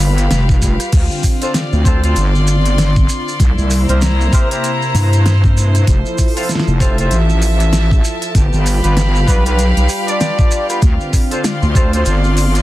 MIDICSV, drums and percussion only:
0, 0, Header, 1, 2, 480
1, 0, Start_track
1, 0, Tempo, 618557
1, 719, Time_signature, 4, 2, 24, 8
1, 9793, End_track
2, 0, Start_track
2, 0, Title_t, "Drums"
2, 0, Note_on_c, 9, 46, 66
2, 0, Note_on_c, 9, 70, 83
2, 75, Note_off_c, 9, 46, 0
2, 76, Note_off_c, 9, 70, 0
2, 140, Note_on_c, 9, 42, 51
2, 145, Note_on_c, 9, 70, 34
2, 217, Note_off_c, 9, 42, 0
2, 222, Note_off_c, 9, 70, 0
2, 238, Note_on_c, 9, 38, 116
2, 238, Note_on_c, 9, 42, 66
2, 243, Note_on_c, 9, 70, 52
2, 315, Note_off_c, 9, 38, 0
2, 315, Note_off_c, 9, 42, 0
2, 320, Note_off_c, 9, 70, 0
2, 381, Note_on_c, 9, 36, 106
2, 386, Note_on_c, 9, 70, 24
2, 458, Note_off_c, 9, 36, 0
2, 464, Note_off_c, 9, 70, 0
2, 479, Note_on_c, 9, 36, 58
2, 482, Note_on_c, 9, 70, 87
2, 556, Note_off_c, 9, 36, 0
2, 560, Note_off_c, 9, 70, 0
2, 619, Note_on_c, 9, 37, 36
2, 619, Note_on_c, 9, 42, 50
2, 623, Note_on_c, 9, 70, 38
2, 697, Note_off_c, 9, 37, 0
2, 697, Note_off_c, 9, 42, 0
2, 701, Note_off_c, 9, 70, 0
2, 717, Note_on_c, 9, 42, 69
2, 717, Note_on_c, 9, 49, 74
2, 719, Note_on_c, 9, 36, 123
2, 719, Note_on_c, 9, 70, 51
2, 794, Note_off_c, 9, 42, 0
2, 794, Note_off_c, 9, 49, 0
2, 796, Note_off_c, 9, 36, 0
2, 797, Note_off_c, 9, 70, 0
2, 861, Note_on_c, 9, 70, 29
2, 939, Note_off_c, 9, 70, 0
2, 956, Note_on_c, 9, 46, 65
2, 959, Note_on_c, 9, 36, 62
2, 959, Note_on_c, 9, 70, 83
2, 1033, Note_off_c, 9, 46, 0
2, 1036, Note_off_c, 9, 36, 0
2, 1036, Note_off_c, 9, 70, 0
2, 1099, Note_on_c, 9, 42, 58
2, 1108, Note_on_c, 9, 70, 40
2, 1177, Note_off_c, 9, 42, 0
2, 1186, Note_off_c, 9, 70, 0
2, 1197, Note_on_c, 9, 38, 119
2, 1197, Note_on_c, 9, 42, 68
2, 1201, Note_on_c, 9, 70, 53
2, 1275, Note_off_c, 9, 38, 0
2, 1275, Note_off_c, 9, 42, 0
2, 1279, Note_off_c, 9, 70, 0
2, 1341, Note_on_c, 9, 70, 25
2, 1419, Note_off_c, 9, 70, 0
2, 1438, Note_on_c, 9, 36, 112
2, 1442, Note_on_c, 9, 70, 85
2, 1516, Note_off_c, 9, 36, 0
2, 1520, Note_off_c, 9, 70, 0
2, 1580, Note_on_c, 9, 42, 54
2, 1587, Note_on_c, 9, 70, 36
2, 1657, Note_off_c, 9, 42, 0
2, 1664, Note_off_c, 9, 70, 0
2, 1677, Note_on_c, 9, 42, 70
2, 1677, Note_on_c, 9, 70, 53
2, 1754, Note_off_c, 9, 70, 0
2, 1755, Note_off_c, 9, 42, 0
2, 1825, Note_on_c, 9, 70, 28
2, 1903, Note_off_c, 9, 70, 0
2, 1919, Note_on_c, 9, 70, 82
2, 1997, Note_off_c, 9, 70, 0
2, 2060, Note_on_c, 9, 42, 51
2, 2068, Note_on_c, 9, 70, 39
2, 2137, Note_off_c, 9, 42, 0
2, 2145, Note_off_c, 9, 70, 0
2, 2159, Note_on_c, 9, 38, 123
2, 2159, Note_on_c, 9, 42, 71
2, 2166, Note_on_c, 9, 70, 52
2, 2237, Note_off_c, 9, 38, 0
2, 2237, Note_off_c, 9, 42, 0
2, 2244, Note_off_c, 9, 70, 0
2, 2298, Note_on_c, 9, 70, 28
2, 2299, Note_on_c, 9, 36, 114
2, 2376, Note_off_c, 9, 70, 0
2, 2377, Note_off_c, 9, 36, 0
2, 2399, Note_on_c, 9, 70, 94
2, 2477, Note_off_c, 9, 70, 0
2, 2548, Note_on_c, 9, 70, 41
2, 2626, Note_off_c, 9, 70, 0
2, 2637, Note_on_c, 9, 36, 127
2, 2639, Note_on_c, 9, 42, 71
2, 2639, Note_on_c, 9, 70, 55
2, 2714, Note_off_c, 9, 36, 0
2, 2716, Note_off_c, 9, 42, 0
2, 2717, Note_off_c, 9, 70, 0
2, 2781, Note_on_c, 9, 70, 27
2, 2859, Note_off_c, 9, 70, 0
2, 2876, Note_on_c, 9, 70, 88
2, 2879, Note_on_c, 9, 46, 62
2, 2953, Note_off_c, 9, 70, 0
2, 2957, Note_off_c, 9, 46, 0
2, 3016, Note_on_c, 9, 70, 39
2, 3021, Note_on_c, 9, 42, 53
2, 3093, Note_off_c, 9, 70, 0
2, 3098, Note_off_c, 9, 42, 0
2, 3116, Note_on_c, 9, 70, 54
2, 3120, Note_on_c, 9, 38, 127
2, 3120, Note_on_c, 9, 42, 71
2, 3194, Note_off_c, 9, 70, 0
2, 3198, Note_off_c, 9, 38, 0
2, 3198, Note_off_c, 9, 42, 0
2, 3266, Note_on_c, 9, 70, 25
2, 3344, Note_off_c, 9, 70, 0
2, 3357, Note_on_c, 9, 36, 110
2, 3360, Note_on_c, 9, 70, 103
2, 3435, Note_off_c, 9, 36, 0
2, 3437, Note_off_c, 9, 70, 0
2, 3501, Note_on_c, 9, 42, 57
2, 3507, Note_on_c, 9, 70, 41
2, 3579, Note_off_c, 9, 42, 0
2, 3585, Note_off_c, 9, 70, 0
2, 3599, Note_on_c, 9, 42, 71
2, 3603, Note_on_c, 9, 70, 58
2, 3677, Note_off_c, 9, 42, 0
2, 3681, Note_off_c, 9, 70, 0
2, 3742, Note_on_c, 9, 70, 28
2, 3819, Note_off_c, 9, 70, 0
2, 3839, Note_on_c, 9, 46, 58
2, 3845, Note_on_c, 9, 70, 102
2, 3916, Note_off_c, 9, 46, 0
2, 3922, Note_off_c, 9, 70, 0
2, 3981, Note_on_c, 9, 42, 54
2, 3981, Note_on_c, 9, 70, 42
2, 4058, Note_off_c, 9, 70, 0
2, 4059, Note_off_c, 9, 42, 0
2, 4080, Note_on_c, 9, 38, 118
2, 4080, Note_on_c, 9, 42, 66
2, 4081, Note_on_c, 9, 70, 52
2, 4157, Note_off_c, 9, 38, 0
2, 4157, Note_off_c, 9, 42, 0
2, 4158, Note_off_c, 9, 70, 0
2, 4220, Note_on_c, 9, 36, 117
2, 4224, Note_on_c, 9, 70, 26
2, 4298, Note_off_c, 9, 36, 0
2, 4302, Note_off_c, 9, 70, 0
2, 4325, Note_on_c, 9, 70, 85
2, 4402, Note_off_c, 9, 70, 0
2, 4460, Note_on_c, 9, 37, 36
2, 4460, Note_on_c, 9, 42, 54
2, 4466, Note_on_c, 9, 70, 45
2, 4538, Note_off_c, 9, 37, 0
2, 4538, Note_off_c, 9, 42, 0
2, 4543, Note_off_c, 9, 70, 0
2, 4558, Note_on_c, 9, 36, 127
2, 4558, Note_on_c, 9, 42, 69
2, 4564, Note_on_c, 9, 70, 55
2, 4636, Note_off_c, 9, 36, 0
2, 4636, Note_off_c, 9, 42, 0
2, 4642, Note_off_c, 9, 70, 0
2, 4700, Note_on_c, 9, 70, 31
2, 4778, Note_off_c, 9, 70, 0
2, 4797, Note_on_c, 9, 70, 90
2, 4799, Note_on_c, 9, 36, 65
2, 4799, Note_on_c, 9, 46, 27
2, 4871, Note_off_c, 9, 46, 0
2, 4871, Note_on_c, 9, 46, 34
2, 4875, Note_off_c, 9, 70, 0
2, 4877, Note_off_c, 9, 36, 0
2, 4941, Note_off_c, 9, 46, 0
2, 4941, Note_on_c, 9, 42, 53
2, 4941, Note_on_c, 9, 46, 43
2, 4945, Note_on_c, 9, 70, 45
2, 4989, Note_off_c, 9, 46, 0
2, 4989, Note_on_c, 9, 46, 51
2, 5019, Note_off_c, 9, 42, 0
2, 5023, Note_off_c, 9, 70, 0
2, 5037, Note_on_c, 9, 38, 54
2, 5037, Note_on_c, 9, 42, 68
2, 5045, Note_on_c, 9, 70, 50
2, 5067, Note_off_c, 9, 46, 0
2, 5085, Note_off_c, 9, 38, 0
2, 5085, Note_on_c, 9, 38, 76
2, 5115, Note_off_c, 9, 42, 0
2, 5117, Note_off_c, 9, 38, 0
2, 5117, Note_on_c, 9, 38, 96
2, 5123, Note_off_c, 9, 70, 0
2, 5181, Note_on_c, 9, 70, 27
2, 5195, Note_off_c, 9, 38, 0
2, 5259, Note_off_c, 9, 70, 0
2, 5279, Note_on_c, 9, 36, 111
2, 5285, Note_on_c, 9, 70, 88
2, 5357, Note_off_c, 9, 36, 0
2, 5363, Note_off_c, 9, 70, 0
2, 5419, Note_on_c, 9, 42, 53
2, 5423, Note_on_c, 9, 70, 45
2, 5497, Note_off_c, 9, 42, 0
2, 5501, Note_off_c, 9, 70, 0
2, 5517, Note_on_c, 9, 42, 67
2, 5523, Note_on_c, 9, 70, 59
2, 5595, Note_off_c, 9, 42, 0
2, 5601, Note_off_c, 9, 70, 0
2, 5661, Note_on_c, 9, 70, 25
2, 5739, Note_off_c, 9, 70, 0
2, 5756, Note_on_c, 9, 46, 62
2, 5761, Note_on_c, 9, 70, 87
2, 5834, Note_off_c, 9, 46, 0
2, 5838, Note_off_c, 9, 70, 0
2, 5899, Note_on_c, 9, 42, 52
2, 5905, Note_on_c, 9, 70, 43
2, 5976, Note_off_c, 9, 42, 0
2, 5982, Note_off_c, 9, 70, 0
2, 5996, Note_on_c, 9, 38, 127
2, 5996, Note_on_c, 9, 42, 67
2, 6000, Note_on_c, 9, 70, 56
2, 6074, Note_off_c, 9, 38, 0
2, 6074, Note_off_c, 9, 42, 0
2, 6078, Note_off_c, 9, 70, 0
2, 6141, Note_on_c, 9, 36, 112
2, 6149, Note_on_c, 9, 70, 26
2, 6218, Note_off_c, 9, 36, 0
2, 6226, Note_off_c, 9, 70, 0
2, 6243, Note_on_c, 9, 70, 92
2, 6320, Note_off_c, 9, 70, 0
2, 6378, Note_on_c, 9, 42, 54
2, 6385, Note_on_c, 9, 70, 41
2, 6456, Note_off_c, 9, 42, 0
2, 6462, Note_off_c, 9, 70, 0
2, 6478, Note_on_c, 9, 36, 127
2, 6478, Note_on_c, 9, 42, 63
2, 6486, Note_on_c, 9, 70, 59
2, 6556, Note_off_c, 9, 36, 0
2, 6556, Note_off_c, 9, 42, 0
2, 6564, Note_off_c, 9, 70, 0
2, 6620, Note_on_c, 9, 70, 29
2, 6697, Note_off_c, 9, 70, 0
2, 6719, Note_on_c, 9, 46, 63
2, 6726, Note_on_c, 9, 70, 105
2, 6797, Note_off_c, 9, 46, 0
2, 6803, Note_off_c, 9, 70, 0
2, 6860, Note_on_c, 9, 42, 55
2, 6863, Note_on_c, 9, 70, 40
2, 6938, Note_off_c, 9, 42, 0
2, 6941, Note_off_c, 9, 70, 0
2, 6959, Note_on_c, 9, 38, 124
2, 6959, Note_on_c, 9, 42, 66
2, 6966, Note_on_c, 9, 70, 61
2, 7037, Note_off_c, 9, 38, 0
2, 7037, Note_off_c, 9, 42, 0
2, 7043, Note_off_c, 9, 70, 0
2, 7104, Note_on_c, 9, 70, 28
2, 7181, Note_off_c, 9, 70, 0
2, 7198, Note_on_c, 9, 36, 119
2, 7202, Note_on_c, 9, 70, 90
2, 7276, Note_off_c, 9, 36, 0
2, 7279, Note_off_c, 9, 70, 0
2, 7339, Note_on_c, 9, 70, 42
2, 7342, Note_on_c, 9, 42, 50
2, 7417, Note_off_c, 9, 70, 0
2, 7420, Note_off_c, 9, 42, 0
2, 7439, Note_on_c, 9, 42, 71
2, 7442, Note_on_c, 9, 70, 55
2, 7517, Note_off_c, 9, 42, 0
2, 7519, Note_off_c, 9, 70, 0
2, 7582, Note_on_c, 9, 42, 37
2, 7585, Note_on_c, 9, 70, 29
2, 7659, Note_off_c, 9, 42, 0
2, 7663, Note_off_c, 9, 70, 0
2, 7673, Note_on_c, 9, 70, 87
2, 7681, Note_on_c, 9, 46, 61
2, 7751, Note_off_c, 9, 70, 0
2, 7759, Note_off_c, 9, 46, 0
2, 7823, Note_on_c, 9, 42, 52
2, 7823, Note_on_c, 9, 70, 42
2, 7900, Note_off_c, 9, 42, 0
2, 7901, Note_off_c, 9, 70, 0
2, 7919, Note_on_c, 9, 70, 54
2, 7921, Note_on_c, 9, 38, 124
2, 7921, Note_on_c, 9, 42, 66
2, 7997, Note_off_c, 9, 70, 0
2, 7998, Note_off_c, 9, 38, 0
2, 7998, Note_off_c, 9, 42, 0
2, 8060, Note_on_c, 9, 36, 110
2, 8060, Note_on_c, 9, 70, 28
2, 8138, Note_off_c, 9, 36, 0
2, 8138, Note_off_c, 9, 70, 0
2, 8158, Note_on_c, 9, 70, 98
2, 8236, Note_off_c, 9, 70, 0
2, 8301, Note_on_c, 9, 70, 47
2, 8302, Note_on_c, 9, 37, 34
2, 8302, Note_on_c, 9, 42, 52
2, 8378, Note_off_c, 9, 70, 0
2, 8380, Note_off_c, 9, 37, 0
2, 8380, Note_off_c, 9, 42, 0
2, 8396, Note_on_c, 9, 70, 53
2, 8398, Note_on_c, 9, 36, 120
2, 8399, Note_on_c, 9, 42, 65
2, 8473, Note_off_c, 9, 70, 0
2, 8475, Note_off_c, 9, 36, 0
2, 8477, Note_off_c, 9, 42, 0
2, 8541, Note_on_c, 9, 70, 25
2, 8618, Note_off_c, 9, 70, 0
2, 8638, Note_on_c, 9, 36, 63
2, 8639, Note_on_c, 9, 46, 65
2, 8641, Note_on_c, 9, 70, 103
2, 8715, Note_off_c, 9, 36, 0
2, 8716, Note_off_c, 9, 46, 0
2, 8719, Note_off_c, 9, 70, 0
2, 8780, Note_on_c, 9, 42, 51
2, 8787, Note_on_c, 9, 70, 36
2, 8857, Note_off_c, 9, 42, 0
2, 8865, Note_off_c, 9, 70, 0
2, 8879, Note_on_c, 9, 38, 117
2, 8879, Note_on_c, 9, 42, 62
2, 8879, Note_on_c, 9, 70, 54
2, 8956, Note_off_c, 9, 38, 0
2, 8956, Note_off_c, 9, 42, 0
2, 8957, Note_off_c, 9, 70, 0
2, 9021, Note_on_c, 9, 70, 25
2, 9098, Note_off_c, 9, 70, 0
2, 9118, Note_on_c, 9, 36, 111
2, 9123, Note_on_c, 9, 70, 103
2, 9196, Note_off_c, 9, 36, 0
2, 9201, Note_off_c, 9, 70, 0
2, 9260, Note_on_c, 9, 42, 51
2, 9261, Note_on_c, 9, 70, 41
2, 9338, Note_off_c, 9, 42, 0
2, 9338, Note_off_c, 9, 70, 0
2, 9354, Note_on_c, 9, 70, 51
2, 9358, Note_on_c, 9, 42, 67
2, 9431, Note_off_c, 9, 70, 0
2, 9435, Note_off_c, 9, 42, 0
2, 9499, Note_on_c, 9, 70, 25
2, 9577, Note_off_c, 9, 70, 0
2, 9598, Note_on_c, 9, 46, 65
2, 9603, Note_on_c, 9, 70, 87
2, 9675, Note_off_c, 9, 46, 0
2, 9681, Note_off_c, 9, 70, 0
2, 9740, Note_on_c, 9, 42, 48
2, 9742, Note_on_c, 9, 70, 38
2, 9793, Note_off_c, 9, 42, 0
2, 9793, Note_off_c, 9, 70, 0
2, 9793, End_track
0, 0, End_of_file